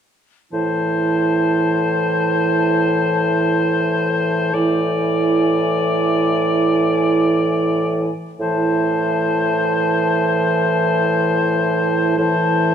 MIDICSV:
0, 0, Header, 1, 6, 480
1, 0, Start_track
1, 0, Key_signature, 0, "minor"
1, 0, Tempo, 500000
1, 12236, End_track
2, 0, Start_track
2, 0, Title_t, "Flute"
2, 0, Program_c, 0, 73
2, 502, Note_on_c, 0, 81, 26
2, 4355, Note_on_c, 0, 80, 30
2, 4370, Note_off_c, 0, 81, 0
2, 7812, Note_off_c, 0, 80, 0
2, 8071, Note_on_c, 0, 81, 35
2, 11661, Note_off_c, 0, 81, 0
2, 11701, Note_on_c, 0, 81, 42
2, 12236, Note_off_c, 0, 81, 0
2, 12236, End_track
3, 0, Start_track
3, 0, Title_t, "Oboe"
3, 0, Program_c, 1, 68
3, 512, Note_on_c, 1, 72, 31
3, 4355, Note_on_c, 1, 74, 36
3, 4370, Note_off_c, 1, 72, 0
3, 7813, Note_off_c, 1, 74, 0
3, 8070, Note_on_c, 1, 72, 38
3, 11661, Note_off_c, 1, 72, 0
3, 11691, Note_on_c, 1, 72, 39
3, 12236, Note_off_c, 1, 72, 0
3, 12236, End_track
4, 0, Start_track
4, 0, Title_t, "Clarinet"
4, 0, Program_c, 2, 71
4, 499, Note_on_c, 2, 64, 29
4, 4313, Note_off_c, 2, 64, 0
4, 4363, Note_on_c, 2, 64, 32
4, 7778, Note_off_c, 2, 64, 0
4, 8071, Note_on_c, 2, 64, 36
4, 11661, Note_off_c, 2, 64, 0
4, 11699, Note_on_c, 2, 64, 39
4, 12236, Note_off_c, 2, 64, 0
4, 12236, End_track
5, 0, Start_track
5, 0, Title_t, "French horn"
5, 0, Program_c, 3, 60
5, 507, Note_on_c, 3, 52, 29
5, 4317, Note_off_c, 3, 52, 0
5, 4360, Note_on_c, 3, 52, 33
5, 7776, Note_off_c, 3, 52, 0
5, 8069, Note_on_c, 3, 52, 40
5, 11660, Note_off_c, 3, 52, 0
5, 11694, Note_on_c, 3, 52, 43
5, 12236, Note_off_c, 3, 52, 0
5, 12236, End_track
6, 0, Start_track
6, 0, Title_t, "Bassoon"
6, 0, Program_c, 4, 70
6, 511, Note_on_c, 4, 45, 30
6, 4319, Note_off_c, 4, 45, 0
6, 4354, Note_on_c, 4, 45, 38
6, 7774, Note_off_c, 4, 45, 0
6, 8061, Note_on_c, 4, 45, 42
6, 11656, Note_off_c, 4, 45, 0
6, 11698, Note_on_c, 4, 45, 41
6, 12236, Note_off_c, 4, 45, 0
6, 12236, End_track
0, 0, End_of_file